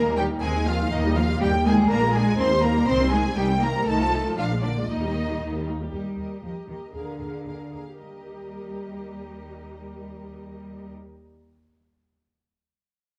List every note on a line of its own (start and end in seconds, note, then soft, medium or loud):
0.00 0.36 D#2 loud
0.00 0.17 A#3 loud
0.00 0.17 A#4 loud
0.04 0.17 G3 medium
0.04 0.17 D#4 medium
0.17 0.29 D#3 medium
0.17 0.25 G3 loud
0.17 0.29 A#3 medium
0.17 0.26 G4 loud
0.17 0.25 G5 loud
0.29 0.42 G3 medium
0.29 0.42 D#4 medium
0.42 0.86 D#2 loud
0.42 0.53 D#3 medium
0.42 0.66 G#3 loud
0.42 0.53 C4 medium
0.42 0.66 G#4 loud
0.42 0.66 G#5 loud
0.54 0.66 G#3 medium
0.54 0.67 D#4 medium
0.67 0.79 D#3 medium
0.67 0.92 F3 loud
0.67 0.79 C4 medium
0.67 0.92 F4 loud
0.67 0.92 F5 loud
0.79 0.91 G#3 medium
0.79 0.91 D#4 medium
0.92 1.35 D#2 loud
0.92 1.00 D#3 loud
0.92 1.03 A#3 loud
0.92 1.03 D#4 medium
0.92 1.16 D#4 loud
0.92 1.16 D#5 loud
1.04 1.16 G3 medium
1.04 1.16 G4 medium
1.16 1.24 F3 loud
1.16 1.28 A#3 medium
1.16 1.28 D#4 medium
1.16 1.41 F4 loud
1.16 1.41 F5 loud
1.28 1.40 G3 medium
1.28 1.40 G4 medium
1.40 1.84 D#2 loud
1.40 1.49 G3 loud
1.40 1.52 A#3 medium
1.40 1.52 D#4 medium
1.40 1.49 G4 loud
1.40 1.65 G5 loud
1.52 1.65 G3 medium
1.52 1.65 G4 medium
1.65 1.89 G#3 loud
1.65 1.77 A#3 medium
1.65 1.77 D#4 medium
1.65 1.90 G#4 loud
1.65 1.74 G#5 loud
1.77 1.89 G3 medium
1.77 1.89 G4 medium
1.89 2.33 A#1 loud
1.89 2.00 A#3 loud
1.89 2.13 A#3 loud
1.89 2.00 D4 medium
1.89 2.14 A#4 loud
1.89 2.14 A#5 loud
2.01 2.14 G#3 medium
2.01 2.13 F4 medium
2.14 2.38 G#3 loud
2.14 2.26 A#3 medium
2.14 2.26 D4 medium
2.14 2.39 G#4 loud
2.14 2.38 G#5 loud
2.26 2.38 G#3 medium
2.26 2.38 F4 medium
2.38 2.82 D#2 loud
2.38 2.50 A#3 medium
2.38 2.46 C4 loud
2.38 2.50 D#4 medium
2.38 2.63 C5 loud
2.38 2.63 C6 loud
2.50 2.63 G3 medium
2.50 2.63 G4 medium
2.63 2.75 A#3 medium
2.63 2.87 A#3 loud
2.63 2.75 D#4 medium
2.63 2.88 A#4 loud
2.63 2.88 A#5 loud
2.75 2.87 G3 medium
2.75 2.88 G4 medium
2.87 3.31 C2 loud
2.87 2.99 D#3 medium
2.87 3.12 C4 loud
2.87 2.99 D#4 loud
2.87 3.12 C5 loud
2.87 3.13 C6 loud
3.00 3.12 G3 medium
3.00 3.12 C4 medium
3.12 3.24 D#3 medium
3.12 3.20 G#3 loud
3.12 3.24 D#4 medium
3.12 3.36 G#4 loud
3.12 3.37 G#5 loud
3.25 3.37 G3 medium
3.25 3.37 C4 medium
3.36 3.80 C2 loud
3.36 3.48 D#3 medium
3.36 3.61 G3 loud
3.36 3.48 D#4 medium
3.36 3.44 G4 loud
3.36 3.62 G5 loud
3.49 3.61 G3 medium
3.49 3.61 C4 medium
3.61 3.74 D#3 medium
3.61 3.86 A#3 loud
3.61 3.74 D#4 medium
3.61 3.86 A#4 loud
3.61 3.87 A#5 loud
3.74 3.87 G3 medium
3.74 3.87 C4 medium
3.85 4.31 C2 loud
3.85 3.98 D#3 medium
3.85 4.35 A3 loud
3.85 3.98 D#4 loud
3.85 4.37 A4 loud
3.85 4.36 A5 loud
3.99 4.12 F3 medium
3.99 4.12 F4 medium
4.12 4.24 D#3 medium
4.12 4.25 D#4 medium
4.25 4.38 F3 medium
4.25 4.37 F4 medium
4.36 4.82 A#1 medium
4.36 4.62 F3 loud
4.36 4.49 A#3 medium
4.36 4.49 D4 medium
4.36 4.45 F4 medium
4.36 4.62 F5 loud
4.51 4.63 G#3 medium
4.51 4.63 F4 medium
4.62 4.88 D3 medium
4.62 4.76 A#3 medium
4.62 4.70 D4 medium
4.62 4.76 D4 medium
4.62 4.88 D5 loud
4.76 4.89 G#3 medium
4.76 4.89 F4 medium
4.88 5.34 D#2 medium
4.88 5.65 D#3 medium
4.88 5.01 A#3 medium
4.88 5.65 D#4 medium
4.88 5.01 D#4 medium
4.88 5.67 D#5 loud
5.02 5.15 G3 medium
5.02 5.15 G4 medium
5.15 5.28 A#3 medium
5.15 5.28 D#4 medium
5.29 5.41 G3 medium
5.29 5.41 G4 medium
5.40 5.86 D#2 medium
5.40 5.53 A#3 medium
5.40 5.53 D#4 medium
5.54 5.67 G3 medium
5.54 5.67 G4 medium
5.68 5.80 A#3 medium
5.68 5.80 D#4 medium
5.80 5.93 G3 medium
5.80 5.92 G4 medium
5.92 6.00 D#2 soft
5.92 6.39 G3 medium
5.92 6.17 G4 soft
5.92 6.17 A#4 soft
5.92 6.17 D#5 soft
6.18 6.26 D#2 soft
6.18 6.41 G4 soft
6.18 6.42 A#4 soft
6.18 6.43 D#5 soft
6.43 6.51 D#2 soft
6.43 6.51 F3 medium
6.43 6.66 G4 soft
6.43 6.67 A#4 soft
6.43 6.67 D#5 soft
6.68 6.76 D#2 soft
6.68 6.76 D#3 medium
6.68 6.92 G4 soft
6.68 6.92 A#4 soft
6.68 6.93 D#5 soft
6.93 7.01 D#2 soft
6.93 7.70 D3 medium
6.93 7.17 G#4 medium
6.93 7.18 A#4 soft
6.93 7.19 F5 soft
7.18 7.27 D#2 soft
7.18 7.43 G#4 soft
7.18 7.45 A#4 soft
7.18 7.45 F5 soft
7.45 7.54 D#2 soft
7.45 7.69 G#4 soft
7.45 7.72 A#4 soft
7.45 7.72 F5 soft
7.71 7.80 D#2 soft
7.71 7.98 G#4 soft
7.71 7.99 A#4 soft
7.71 7.99 F5 soft
7.99 10.90 D#2 soft
7.99 10.90 G3 soft
7.99 10.90 G4 soft
7.99 10.91 A#4 soft
7.99 10.91 D#5 soft